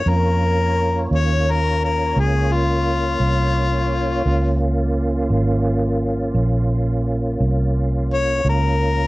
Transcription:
0.00 0.11 C#5 medium
0.06 1.08 F2 medium
0.06 4.22 A#3 medium
0.06 4.22 C#4 medium
0.06 4.23 F4 medium
0.06 1.10 A#4 medium
0.06 4.23 C#5 medium
1.11 2.13 D#2 medium
1.11 1.53 C#5 medium
1.51 1.83 A#4 medium
1.85 2.21 A#4 medium
2.16 3.18 C#2 medium
2.16 2.54 G#4 medium
2.52 4.58 F4 medium
3.20 4.22 C2 medium
4.25 5.28 C#2 medium
4.25 8.41 A#3 medium
4.25 8.42 C#4 medium
4.25 8.42 F4 medium
5.30 6.32 G#1 medium
6.34 7.37 A#1 medium
7.40 8.42 C2 medium
8.13 8.46 C#5 medium
8.44 9.07 C#2 medium
8.44 9.07 A#3 medium
8.44 9.07 C#4 medium
8.44 9.07 F4 medium
8.50 9.07 A#4 medium

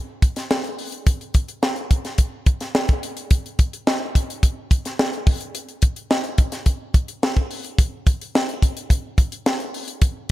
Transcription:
0.22 kick medium
0.22 closed hi-hat medium
0.36 snare soft
0.36 closed hi-hat medium
0.51 snare loud
0.64 closed hi-hat soft
0.79 open hi-hat medium
0.92 closed hi-hat medium
1.07 kick loud
1.07 closed hi-hat loud
1.21 closed hi-hat soft
1.34 kick loud
1.34 closed hi-hat medium
1.48 closed hi-hat soft
1.63 snare loud
1.76 closed hi-hat soft
1.91 kick medium
1.91 closed hi-hat medium
2.05 snare soft
2.05 closed hi-hat soft
2.18 kick medium
2.18 closed hi-hat medium
2.46 kick loud
2.46 closed hi-hat medium
2.61 snare soft
2.61 closed hi-hat medium
2.75 snare loud
2.88 kick medium
2.88 closed hi-hat soft
3.03 closed hi-hat medium
3.17 closed hi-hat medium
3.31 kick loud
3.31 closed hi-hat medium
3.46 closed hi-hat soft
3.59 kick loud
3.59 closed hi-hat medium
3.73 closed hi-hat medium
3.87 snare loud
4.15 kick medium
4.15 closed hi-hat medium
4.30 closed hi-hat medium
4.43 kick medium
4.43 closed hi-hat medium
4.71 kick medium
4.71 closed hi-hat medium
4.85 snare soft
4.85 closed hi-hat soft
4.99 snare loud
5.13 closed hi-hat soft
5.27 kick loud
5.27 open hi-hat medium
5.41 closed hi-hat medium
5.55 closed hi-hat medium
5.69 closed hi-hat soft
5.82 kick loud
5.82 closed hi-hat medium
5.96 closed hi-hat medium
6.11 snare loud
6.24 closed hi-hat soft
6.38 kick loud
6.38 closed hi-hat medium
6.52 snare soft
6.52 closed hi-hat medium
6.66 kick medium
6.66 closed hi-hat medium
6.94 kick loud
6.94 closed hi-hat medium
7.08 closed hi-hat medium
7.23 snare loud
7.36 kick medium
7.36 closed hi-hat soft
7.51 open hi-hat medium
7.65 closed hi-hat medium
7.79 kick loud
7.79 closed hi-hat medium
8.07 kick loud
8.07 closed hi-hat medium
8.21 closed hi-hat medium
8.35 snare loud
8.49 closed hi-hat soft
8.62 kick medium
8.62 closed hi-hat medium
8.77 closed hi-hat medium
8.90 kick medium
8.90 closed hi-hat medium
9.18 kick loud
9.18 closed hi-hat medium
9.32 closed hi-hat medium
9.46 snare loud
9.60 closed hi-hat soft
9.74 open hi-hat medium
9.88 closed hi-hat medium
10.02 kick loud
10.02 closed hi-hat loud

